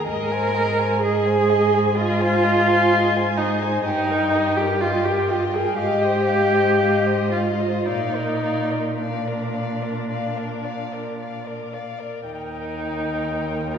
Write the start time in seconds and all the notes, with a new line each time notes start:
0.07 G#2 G#4 A#4 D#5
0.32 C5 G#5
0.54 G#4 D#5
0.79 C5 G#5
1.02 G#4 D#5
1.26 C5 G#5
1.50 G#4 D#5
1.74 C5 G#5
1.96 F4 G#4 D#5
2.21 C5 G#5
2.43 G#4 D#5
2.68 C5 G#5
2.92 G#4 D#5
3.16 C5 G#5
3.37 D#4 G#4 D#5
3.63 C5 G#5
3.84 G2 D#4 G4 D#5
4.07 A#4 G5
4.33 G4 D#5
4.57 G4 A#4 G5
4.81 F4 G4 D#5
5.05 G4 A#4 G5
5.29 F4 G4 D#5
5.53 G#4 A#4 G5
5.77 G#2 G4 D#5 F5
6.02 C5 D#5
6.27 D#5 F5
6.54 C5 D#5
6.80 D#5 F5
7.06 C5 D#5
7.32 F4 D#5 F5
7.60 C5 D#5
7.86 A#2 D#4 D5 F5
8.15 A#4 D5
8.43 D5 F5
8.71 A#4 D5
8.99 D4 D5 F5
9.28 A#4 D5
9.54 D5 F5
9.82 A#4 D5
10.10 D5 F5
10.37 A#4 D5
10.65 D5 F5
10.93 A#4 D5
11.19 D5 F5
11.45 A#4 D5
11.73 D5 F5
11.99 A#4 D5
12.25 D#2 D#4 A#4 G5
13.75 F4